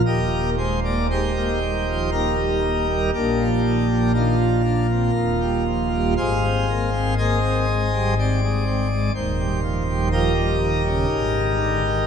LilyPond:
<<
  \new Staff \with { instrumentName = "Pipe organ" } { \time 3/4 \key ees \major \tempo 4 = 60 <g' bes' ees''>8 c''16 d''16 <ees' g' c''>4 <ees' g' bes'>4 | <bes d' g'>4 <bes d' f'>2 | <aes' c'' f''>4 <aes' c'' ees''>4 d''4 | c''4 <ees' g' bes'>2 | }
  \new Staff \with { instrumentName = "Pipe organ" } { \clef bass \time 3/4 \key ees \major << { ees,16 bes16 aes16 bes16 aes16 bes16 g16 f16 bes16 g16 bes16 g16 | bes,16 f16 ees16 f16 ees16 f16 d'16 c'16 ees,16 g16 f16 g16 | aes,16 c'16 bes16 c'16 bes16 c'16 aes16 g16 c'16 aes16 c'16 aes16 | ees,16 g16 f16 g16 f16 g16 ees16 des16 aes,16 ees16 d16 ees16 | } \\ { ees,,2. | bes,,2 ees,,4 | aes,,2. | ees,,2 aes,,4 | } >> }
>>